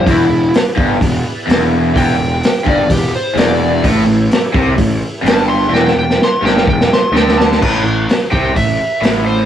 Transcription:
<<
  \new Staff \with { instrumentName = "Electric slide guitar" } { \time 4/4 \key e \dorian \tempo 4 = 127 e'4 r2. | g''4. d''8 g'8 c''8 d''4 | r2. a''8 c'''8 | g''8 g''8 c'''8 g''8 g''8 c'''8 g''8 a''8 |
r4. g''8 e''4. c''8 | }
  \new Staff \with { instrumentName = "Tonewheel organ" } { \time 4/4 \key e \dorian \tuplet 3/2 { <c' f' a' dis''>8 <b e' gis' d''>4~ } <b e' gis' d''>2.~ | <b e' gis' d''>1 | <a e' g' cis''>1 | <b e' gis' d''>1 |
r1 | }
  \new Staff \with { instrumentName = "Overdriven electric guitar" } { \clef bass \time 4/4 \key e \dorian e,8 e,8 r8 g,8 e,8 r8 e,4 | e,8 e,8 r8 g,8 e,8 r8 e,4 | a,8 a,8 r8 c8 a,8 r8 g,4 | e,8 e,8 r8 g,8 e,8 r8 d4 |
a,8 a,8 r8 c8 a,8 r8 a,4 | }
  \new Staff \with { instrumentName = "Picked electric bass" } { \clef bass \time 4/4 \key e \dorian e,,8 e,,8 r8 g,,8 e,,8 r8 e,,4 | e,,8 e,,8 r8 g,,8 e,,8 r8 e,,4 | a,,8 a,,8 r8 c,8 a,,8 r8 g,,4 | e,,8 e,,8 r8 g,,8 e,,8 r8 d,4 |
a,,8 a,,8 r8 c,8 a,,8 r8 a,,4 | }
  \new DrumStaff \with { instrumentName = "Drums" } \drummode { \time 4/4 <hho bd>4 <hho sn>8 bd8 <hho bd>4 <hho sn>4 | <hho bd>4 <hho sn>8 bd8 <hho bd>4 <hho sn>4 | <hho bd>4 <hho sn>8 bd8 <hho bd>4 <hho sn>4 | sn16 sn8 sn16 sn8 sn16 sn16 bd16 sn16 sn8 sn16 sn16 sn16 sn16 |
<cymc bd>4 <hho sn>8 bd8 <hho bd>4 <hho sn>4 | }
>>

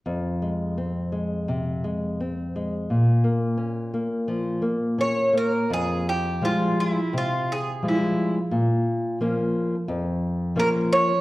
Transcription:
<<
  \new Staff \with { instrumentName = "Bouzouki" } { \time 4/4 \key f \minor \tempo 4 = 86 r1 | r2. des''8 bes'8 | aes'8 g'8 f'8 e'8 f'8 aes'8 e'8. r16 | r2. bes'8 des''8 | }
  \new Staff \with { instrumentName = "Nylon-string guitar" } { \clef bass \time 4/4 \key f \minor f,8 aes8 c'8 aes8 c8 aes8 c'8 aes8 | bes,8 bes8 des'8 bes8 f8 bes8 des'8 bes8 | f,4 <f g aes>4 c4 <f g aes>4 | bes,4 <f bes des'>4 f,4 <f bes des'>4 | }
>>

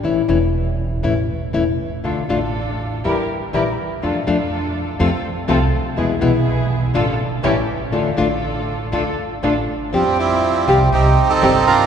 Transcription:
<<
  \new Staff \with { instrumentName = "String section" } { \time 4/4 \key d \minor \tempo 4 = 121 r1 | <d' f' a'>8 <d' f' a'>4. <e' g' bes'>8 r8 <e' g' bes'>8 r8 | <d' f' a'>8 <d' f' a'>4. <c' f' a'>8 r8 <c' f' a'>8 r8 | <b e' gis'>8 <b e' gis'>4. <d' f' a'>8 r8 <cis' g' a'>8 r8 |
<d' f' a'>8 <d' f' a'>4. <d' f' a'>8 r8 <d' f' a'>8 r8 | \key f \major <f c' g'>4. <c' f' g'>8 <c' ees' g'>8 r8 <c' ees' g'>8 r8 | }
  \new Staff \with { instrumentName = "Bandoneon" } { \time 4/4 \key d \minor << { r1 | r1 | r1 | r1 |
r1 | \key f \major c'8 e'4 f'8 g'8. a'8. bes'8 | } \\ { r1 | r1 | r1 | r1 |
r1 | <f g>8 <g c'>4. <c' ees'>8. <c' ees'>8. <d' f'>8 | } >> }
  \new Staff \with { instrumentName = "Nylon-string guitar" } { \time 4/4 \key d \minor <e a cis' e'>8 <e a cis' e'>8 r4 <e a cis' e'>8 r8 <e a cis' e'>8 r8 | <d a d' f'>8 <d a d' f'>8 r4 <e g e'>8 r8 <e g e'>8 r8 | <f a d' f'>8 <f a d' f'>8 r4 <c f a c' f'>8 r8 <c f a c' f'>8 r8 | <b, e gis b e'>8 <b, e gis b e'>8 r4 <d a d' f'>8 r8 <e g cis' e'>8 r8 |
<d a d' f'>8 <d a d' f'>8 r4 <d a d' f'>8 r8 <d a d' f'>8 r8 | \key f \major <f g c' g'>8 r4 <c ees g c' g'>8 r4 <c ees g c' g'>8 r8 | }
  \new Staff \with { instrumentName = "Upright bass" } { \clef bass \time 4/4 \key d \minor a,,16. r32 e,,4~ e,,16. r32 a,,16. r8 r32 e,,16. r8 r32 | d,16. r32 a,,4~ a,,16. r32 e,16. r8 r32 bes,,16. r8 r32 | f,16. r32 f,4~ f,16. r32 f,16. r8 r32 c,16. r8 r32 | e,16. r32 b,,4~ b,,16. r32 a,,16. r8 r32 a,,16. r8 r32 |
d,16. r32 a,,4~ a,,16. r32 d,16. r8 r32 a,,16. r8 r32 | \key f \major f,4~ f,16. r32 c,16. r32 c,16. r8 r32 g,,16. r16 b,,32 c,32 r32 | }
>>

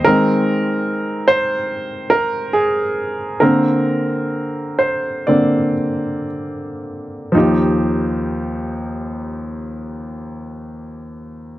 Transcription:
<<
  \new Staff \with { instrumentName = "Grand piano" } { \time 4/4 \key ees \major \tempo 4 = 62 bes'4. c''4 bes'8 aes'8. r16 | bes'4. c''8 d''4 r4 | <f ees' g'>1 | }
  \new Staff \with { instrumentName = "Grand piano" } { \time 4/4 \key ees \major <ees aes c'>4. r2 r8 | <d bes c'>4. r8 <d bes c'>8 r4. | ees,1 | }
>>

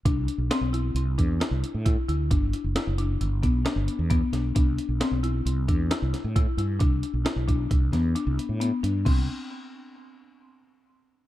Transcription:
<<
  \new Staff \with { instrumentName = "Marimba" } { \time 5/4 \key c \lydian \tempo 4 = 133 d'4 c'8 e'4 d'8 e'4 e'8 e'8 | d'4 e'8 d'4 b8 d'4 b8 d'8 | d'4 c'8 e'4 d'8 e'4 e'8 e'8 | d'4 e'8 d'4 b8 d'4 b8 d'8 |
c'8 r1 r8 | }
  \new Staff \with { instrumentName = "Fretless electric bass" } { \clef bass \time 5/4 \key c \lydian c,8 r16 b,,16 r16 b,,8. c,8 e,8 r16 c,16 r16 a,8 r16 d,8 | g,,8 r16 fis,,16 r16 fis,,8. g,,8 b,,8 r16 g,,16 r16 e,8 r16 b,,8 | c,8 r16 b,,16 r16 b,,8. c,8 e,8 r16 c,16 r16 a,8 r16 g,8 | c,8 r16 b,,16 r16 b,,8. c,8 e,8 r16 c,16 r16 a,8 r16 g,8 |
c,8 r1 r8 | }
  \new DrumStaff \with { instrumentName = "Drums" } \drummode { \time 5/4 <hh bd>8 hh8 <hh sn>8 hh8 hh8 <hh bd>8 <hh sn>8 hh8 <hh bd>8 hh8 | <hh bd>8 hh8 <hh sn>8 hh8 hh8 <hh bd>8 <hh sn>8 hh8 <hh bd>8 <hh sn>8 | <hh bd>8 hh8 <hh sn>8 hh8 hh8 <hh bd>8 <hh sn>8 <hh sn>8 <hh bd>8 hh8 | <hh bd>8 hh8 <hh sn>8 <hh bd>8 <hh bd>8 <hh sn>8 hh8 hh8 hh8 hh8 |
<cymc bd>4 r4 r4 r4 r4 | }
>>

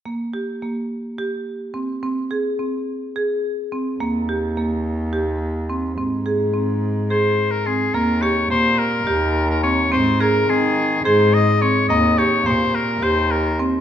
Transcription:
<<
  \new Staff \with { instrumentName = "Oboe" } { \time 7/8 \key ees \mixolydian \tempo 4 = 106 r2. r8 | r2. r8 | r2. r8 | r2 c''8. bes'16 aes'8 |
bes'8 des''8 c''8 bes'4~ bes'16 bes'16 des''8 | c''8 bes'8 aes'4 c''8 ees''8 des''8 | ees''8 des''8 c''8 bes'8 c''8 bes'8 r8 | }
  \new Staff \with { instrumentName = "Marimba" } { \time 7/8 \key ees \mixolydian bes8 g'8 bes4 g'4 c'8 | c'8 aes'8 c'4 aes'4 c'8 | bes8 g'8 bes4 g'4 c'8 | c'8 aes'8 c'4 aes'4 c'8 |
bes8 g'8 bes4 g'4 c'8 | c'8 aes'8 c'4 aes'4 c'8 | bes8 g'8 bes4 g'4 c'8 | }
  \new Staff \with { instrumentName = "Cello" } { \clef bass \time 7/8 \key ees \mixolydian r2. r8 | r2. r8 | ees,2.~ ees,8 | aes,2.~ aes,8 |
ees,4 bes,4 ees,4. | aes,4 ees4 aes,4. | ees,4 bes,4 ees,4. | }
>>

